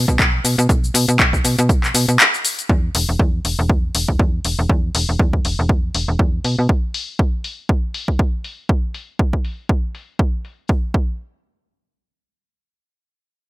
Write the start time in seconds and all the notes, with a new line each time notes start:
0.08 B2, kick, closed hi-hat, cabasa
0.19 B1, kick, clap, closed hi-hat, cabasa
0.45 B2, open hi-hat, cabasa
0.58 B2, closed hi-hat, cabasa
0.69 B1, kick, closed hi-hat, cabasa
0.84 cabasa
0.94 B2, open hi-hat, cabasa
1.08 B2, closed hi-hat, cabasa
1.19 B1, kick, clap, closed hi-hat, cabasa
1.33 kick, cabasa
1.45 B2, open hi-hat, cabasa
1.59 B2, closed hi-hat, cabasa
1.69 B1, kick, closed hi-hat, cabasa
1.83 B2, clap, cabasa
1.94 B2, open hi-hat, cabasa
2.08 B2, closed hi-hat, cabasa
2.20 clap, closed hi-hat, cabasa
2.34 cabasa
2.45 open hi-hat, cabasa
2.59 closed hi-hat, cabasa
2.69 E2, kick
2.95 E1, open hi-hat
3.09 E1
3.19 E2, kick
3.45 E1, open hi-hat
3.59 E1
3.70 E2, kick
3.95 E1, open hi-hat
4.08 E1, kick
4.19 E2, kick
4.45 E1, open hi-hat
4.59 E1
4.69 E2, kick
4.95 E1, open hi-hat
5.09 E1
5.19 E2, kick
5.33 kick
5.45 E1, open hi-hat
5.59 E1
5.69 E2, kick
5.95 E1, open hi-hat
6.08 E1
6.19 E2, kick
6.45 B2, open hi-hat
6.59 B2
6.69 kick
6.94 open hi-hat
7.19 kick
7.44 open hi-hat
7.69 kick
7.94 open hi-hat
8.08 kick
8.19 kick
8.44 open hi-hat
8.69 kick
8.94 open hi-hat
9.19 kick
9.33 kick
9.45 open hi-hat
9.69 kick
9.95 open hi-hat
10.19 kick
10.45 open hi-hat
10.69 kick
10.94 kick